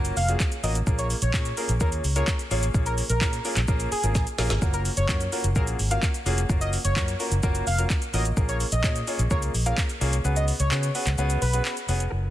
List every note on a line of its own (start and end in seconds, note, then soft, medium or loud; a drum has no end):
0.00 0.11 F#1 loud
0.00 0.13 A#3 medium
0.00 0.13 C#4 medium
0.00 0.13 F4 medium
0.00 0.13 F#4 medium
0.00 0.13 A#4 loud
0.05 closed hi-hat medium
0.05 shaker medium
0.17 0.34 F1 loud
0.17 0.33 F5 medium
0.17 open hi-hat medium
0.17 shaker medium
0.28 0.48 A#3 medium
0.28 0.48 C#4 medium
0.28 0.48 F4 medium
0.28 0.49 F#4 medium
0.28 0.49 G#4 medium
0.28 closed hi-hat medium
0.28 shaker medium
0.40 kick loud
0.40 clap loud
0.40 shaker medium
0.52 closed hi-hat soft
0.52 shaker medium
0.63 0.81 A1 loud
0.63 0.77 A#3 medium
0.63 0.77 C#4 medium
0.63 0.77 F4 medium
0.63 0.77 F#4 medium
0.63 0.77 A#4 medium
0.63 0.72 D#5 medium
0.63 open hi-hat medium
0.63 shaker medium
0.75 closed hi-hat medium
0.75 shaker medium
0.87 1.13 A#1 loud
0.87 1.14 A#3 medium
0.87 1.14 C#4 medium
0.87 1.14 F4 medium
0.87 1.14 G#4 medium
0.87 1.14 A#4 medium
0.87 kick loud
0.87 shaker medium
0.99 1.07 C#5 medium
0.99 closed hi-hat medium
0.99 shaker medium
1.10 open hi-hat medium
1.10 shaker medium
1.22 1.31 A#1 loud
1.22 1.55 C#5 medium
1.22 closed hi-hat medium
1.22 shaker medium
1.34 1.51 A#2 loud
1.34 1.47 A#3 medium
1.34 1.47 C#4 medium
1.34 1.47 F4 medium
1.34 1.47 G#4 medium
1.34 1.47 C#5 medium
1.34 kick loud
1.34 clap loud
1.34 shaker medium
1.45 closed hi-hat medium
1.45 shaker medium
1.57 1.70 A#3 medium
1.57 1.71 C#4 medium
1.57 1.71 F4 medium
1.57 1.71 G#4 medium
1.57 1.71 A#4 medium
1.57 open hi-hat medium
1.57 shaker medium
1.69 1.78 A#1 loud
1.69 closed hi-hat medium
1.69 shaker medium
1.80 1.98 D#2 loud
1.80 2.01 A#3 medium
1.80 2.01 C#4 medium
1.80 2.01 F4 medium
1.80 2.01 G#4 medium
1.80 1.89 A#4 medium
1.80 2.01 C#5 medium
1.80 kick loud
1.80 shaker medium
1.92 closed hi-hat medium
1.92 shaker medium
2.04 2.21 C#2 loud
2.04 open hi-hat medium
2.04 shaker medium
2.16 2.36 A#3 medium
2.16 2.36 C#4 medium
2.16 2.36 F4 medium
2.16 2.36 G#4 medium
2.16 2.36 A#4 medium
2.16 2.32 C#5 medium
2.16 closed hi-hat medium
2.16 shaker medium
2.27 kick loud
2.27 clap loud
2.27 shaker medium
2.39 closed hi-hat soft
2.39 shaker soft
2.51 2.68 A1 medium
2.51 2.64 A#3 loud
2.51 2.64 C#4 medium
2.51 2.64 F4 medium
2.51 2.64 G#4 medium
2.51 2.64 C#5 loud
2.51 open hi-hat medium
2.51 shaker medium
2.63 closed hi-hat medium
2.63 shaker medium
2.74 3.00 A#1 loud
2.74 3.01 A#3 medium
2.74 3.01 C#4 medium
2.74 3.01 F4 medium
2.74 3.01 G#4 medium
2.74 3.01 C#5 medium
2.74 kick loud
2.74 shaker medium
2.86 2.94 A#4 medium
2.86 closed hi-hat medium
2.86 shaker medium
2.98 open hi-hat medium
2.98 shaker medium
3.10 3.23 A#1 loud
3.10 3.43 A#4 medium
3.10 closed hi-hat medium
3.10 shaker medium
3.21 3.39 A#2 loud
3.21 3.35 A#3 medium
3.21 3.35 C#4 medium
3.21 3.35 F4 medium
3.21 3.35 G#4 medium
3.21 3.35 A#4 medium
3.21 kick loud
3.21 clap loud
3.21 shaker medium
3.33 closed hi-hat medium
3.33 shaker medium
3.45 3.58 A#3 medium
3.45 3.58 C#4 medium
3.45 3.58 F4 medium
3.45 3.58 G#4 medium
3.45 3.58 A#4 medium
3.45 open hi-hat medium
3.45 shaker medium
3.57 3.65 A#1 medium
3.57 clap medium
3.57 closed hi-hat medium
3.57 shaker medium
3.68 3.85 A#1 loud
3.68 3.88 A#3 medium
3.68 3.88 C#4 medium
3.68 3.88 F4 medium
3.68 3.88 G#4 medium
3.68 3.88 A#4 loud
3.68 kick loud
3.68 shaker medium
3.80 closed hi-hat medium
3.80 shaker medium
3.92 4.25 G#4 medium
3.92 open hi-hat medium
3.92 shaker medium
4.03 4.12 G#1 medium
4.03 4.23 A#3 medium
4.03 4.23 C#4 medium
4.03 4.23 F4 medium
4.03 4.23 G#4 medium
4.03 4.24 A#4 medium
4.03 closed hi-hat medium
4.03 shaker medium
4.15 4.24 A#1 medium
4.15 kick loud
4.15 snare medium
4.15 shaker medium
4.27 closed hi-hat medium
4.27 shaker medium
4.38 4.47 A#1 loud
4.38 4.52 A#3 medium
4.38 4.52 C#4 medium
4.38 4.52 F4 medium
4.38 4.52 G#4 medium
4.38 4.52 A#4 loud
4.38 snare loud
4.38 open hi-hat medium
4.38 shaker medium
4.50 4.59 G#1 medium
4.50 snare loud
4.50 closed hi-hat medium
4.50 shaker medium
4.62 4.88 F#1 loud
4.62 4.89 A#3 medium
4.62 4.89 C#4 medium
4.62 4.89 F4 medium
4.62 4.89 F#4 medium
4.62 4.89 A#4 medium
4.62 kick loud
4.62 shaker medium
4.74 4.82 A#4 medium
4.74 closed hi-hat medium
4.74 shaker medium
4.85 open hi-hat medium
4.85 shaker medium
4.97 5.06 F#1 medium
4.97 5.30 C#5 medium
4.97 closed hi-hat medium
4.97 shaker medium
5.09 5.26 F#2 loud
5.09 5.22 A#3 medium
5.09 5.22 C#4 medium
5.09 5.22 F4 medium
5.09 5.22 F#4 medium
5.09 5.22 A#4 medium
5.09 kick loud
5.09 clap loud
5.09 shaker medium
5.21 closed hi-hat medium
5.21 shaker medium
5.32 5.46 A#3 medium
5.32 5.46 C#4 medium
5.32 5.46 F4 medium
5.32 5.46 F#4 medium
5.32 5.46 A#4 medium
5.32 open hi-hat medium
5.32 shaker medium
5.44 5.53 F#1 medium
5.44 closed hi-hat medium
5.44 shaker medium
5.56 5.73 A#1 loud
5.56 5.76 A#3 medium
5.56 5.76 C#4 medium
5.56 5.76 F4 medium
5.56 5.76 F#4 medium
5.56 5.76 G#4 medium
5.56 5.64 A#4 medium
5.56 kick loud
5.56 shaker medium
5.67 closed hi-hat medium
5.67 shaker medium
5.79 5.96 G#1 medium
5.79 open hi-hat medium
5.79 shaker medium
5.91 6.11 A#3 medium
5.91 6.11 C#4 medium
5.91 6.11 F4 medium
5.91 6.11 F#4 medium
5.91 6.11 A#4 medium
5.91 6.07 F5 medium
5.91 closed hi-hat medium
5.91 shaker medium
6.03 kick loud
6.03 clap loud
6.03 shaker medium
6.14 closed hi-hat soft
6.14 shaker medium
6.26 6.43 F1 medium
6.26 6.39 A#3 medium
6.26 6.39 C#4 medium
6.26 6.39 F4 medium
6.26 6.39 F#4 medium
6.26 6.39 G#4 loud
6.26 open hi-hat medium
6.26 shaker medium
6.38 closed hi-hat medium
6.38 shaker medium
6.49 6.75 F#1 loud
6.49 6.76 A#3 medium
6.49 6.76 C#4 medium
6.49 6.76 F4 medium
6.49 6.76 F#4 medium
6.49 6.76 A#4 medium
6.49 kick loud
6.49 shaker medium
6.61 6.69 D#5 medium
6.61 closed hi-hat medium
6.61 shaker medium
6.73 open hi-hat medium
6.73 shaker medium
6.85 6.93 F#1 loud
6.85 7.18 C#5 medium
6.85 closed hi-hat medium
6.85 shaker medium
6.96 7.14 F#2 loud
6.96 7.10 A#3 medium
6.96 7.10 C#4 medium
6.96 7.10 F4 medium
6.96 7.10 F#4 medium
6.96 7.10 A#4 medium
6.96 kick loud
6.96 clap loud
6.96 shaker medium
7.08 closed hi-hat medium
7.08 shaker medium
7.20 7.33 A#3 medium
7.20 7.33 C#4 medium
7.20 7.33 F4 medium
7.20 7.33 F#4 medium
7.20 7.33 A#4 medium
7.20 open hi-hat medium
7.20 shaker medium
7.31 7.40 F#1 loud
7.31 closed hi-hat medium
7.31 shaker medium
7.43 7.61 F#1 loud
7.43 7.63 A#3 loud
7.43 7.63 C#4 medium
7.43 7.63 F4 medium
7.43 7.63 F#4 medium
7.43 7.63 A#4 loud
7.43 kick loud
7.43 shaker medium
7.55 closed hi-hat medium
7.55 shaker medium
7.67 7.84 F1 loud
7.67 7.83 F5 medium
7.67 open hi-hat medium
7.67 shaker medium
7.78 7.98 A#3 medium
7.78 7.98 C#4 medium
7.78 7.98 F4 medium
7.78 7.98 F#4 medium
7.78 7.99 A#4 medium
7.78 closed hi-hat medium
7.78 shaker medium
7.90 kick loud
7.90 clap loud
7.90 shaker medium
8.02 closed hi-hat soft
8.02 shaker medium
8.13 8.31 A1 loud
8.13 8.27 A#3 medium
8.13 8.27 C#4 medium
8.13 8.27 F4 medium
8.13 8.27 F#4 medium
8.13 8.27 A#4 medium
8.13 8.22 D#5 medium
8.13 open hi-hat medium
8.13 shaker medium
8.25 closed hi-hat medium
8.25 shaker medium
8.37 8.63 A#1 loud
8.37 8.64 A#3 medium
8.37 8.64 C#4 medium
8.37 8.64 F4 medium
8.37 8.64 G#4 medium
8.37 8.64 A#4 medium
8.37 kick loud
8.37 shaker medium
8.49 8.57 C#5 medium
8.49 closed hi-hat medium
8.49 shaker medium
8.60 open hi-hat medium
8.60 shaker medium
8.72 8.81 A#1 loud
8.72 9.05 D#5 medium
8.72 closed hi-hat medium
8.72 shaker medium
8.84 9.01 A#2 medium
8.84 8.97 A#3 medium
8.84 8.97 C#4 medium
8.84 8.97 F4 medium
8.84 8.97 G#4 medium
8.84 8.97 C#5 medium
8.84 kick loud
8.84 clap loud
8.84 shaker medium
8.96 closed hi-hat medium
8.96 shaker medium
9.07 9.21 A#3 medium
9.07 9.21 C#4 medium
9.07 9.21 F4 medium
9.07 9.21 G#4 medium
9.07 9.21 C#5 medium
9.07 open hi-hat medium
9.07 shaker medium
9.19 9.28 A#1 loud
9.19 closed hi-hat medium
9.19 shaker medium
9.30 9.51 A#3 medium
9.30 9.51 C#4 medium
9.30 9.51 F4 medium
9.30 9.51 G#4 medium
9.30 9.51 A#4 medium
9.30 9.39 C#5 medium
9.30 kick loud
9.30 shaker medium
9.42 closed hi-hat medium
9.42 shaker medium
9.54 9.71 A#1 medium
9.54 open hi-hat medium
9.54 shaker medium
9.66 9.86 A#3 medium
9.66 9.86 C#4 medium
9.66 9.86 F4 medium
9.66 9.86 G#4 medium
9.66 9.86 A#4 medium
9.66 9.82 F5 medium
9.66 closed hi-hat medium
9.66 shaker medium
9.78 kick loud
9.78 clap loud
9.78 shaker medium
9.89 closed hi-hat soft
9.89 shaker medium
10.01 10.18 C2 loud
10.01 10.14 A#3 medium
10.01 10.14 C#4 medium
10.01 10.14 F4 medium
10.01 10.14 G#4 medium
10.01 10.15 C#5 loud
10.01 open hi-hat medium
10.01 shaker medium
10.13 closed hi-hat medium
10.13 shaker medium
10.24 10.50 C#2 loud
10.24 10.51 B3 medium
10.24 10.51 C#4 medium
10.24 10.51 F#4 medium
10.24 10.51 G#4 medium
10.24 10.51 B4 medium
10.24 shaker medium
10.36 10.44 D#5 medium
10.36 closed hi-hat medium
10.36 shaker medium
10.48 open hi-hat medium
10.48 shaker medium
10.60 10.68 C#2 medium
10.60 10.93 C#5 medium
10.60 closed hi-hat medium
10.60 shaker medium
10.71 10.89 C#3 loud
10.71 10.85 B3 medium
10.71 10.85 C#4 medium
10.71 10.85 F#4 medium
10.71 10.85 G#4 medium
10.71 10.85 B4 medium
10.71 clap loud
10.71 shaker medium
10.83 closed hi-hat medium
10.83 shaker medium
10.95 11.08 B3 medium
10.95 11.08 C#4 medium
10.95 11.08 F#4 medium
10.95 11.08 G#4 medium
10.95 11.08 B4 medium
10.95 open hi-hat medium
10.95 shaker medium
11.07 11.15 C#2 medium
11.07 clap medium
11.07 closed hi-hat medium
11.07 shaker medium
11.18 11.35 C#2 loud
11.18 11.38 B3 loud
11.18 11.38 C#4 medium
11.18 11.38 F#4 medium
11.18 11.38 G#4 medium
11.18 11.38 B4 loud
11.18 shaker medium
11.30 closed hi-hat medium
11.30 shaker medium
11.42 11.59 B1 loud
11.42 11.75 B4 medium
11.42 open hi-hat medium
11.42 shaker medium
11.53 11.73 B3 medium
11.53 11.73 C#4 medium
11.53 11.73 F#4 medium
11.53 11.73 G#4 medium
11.53 11.74 B4 medium
11.53 closed hi-hat medium
11.53 shaker medium
11.65 clap loud
11.65 shaker medium
11.77 closed hi-hat soft
11.77 shaker medium
11.88 12.06 F1 medium
11.88 12.02 B3 medium
11.88 12.02 C#4 medium
11.88 12.02 F#4 medium
11.88 12.02 G#4 medium
11.88 12.02 B4 loud
11.88 open hi-hat medium
11.88 shaker medium
12.00 closed hi-hat medium
12.00 shaker medium
12.10 12.30 F#1 medium
12.10 12.30 C#4 medium
12.10 12.30 F4 medium
12.10 12.30 F#4 medium
12.10 12.30 A#4 medium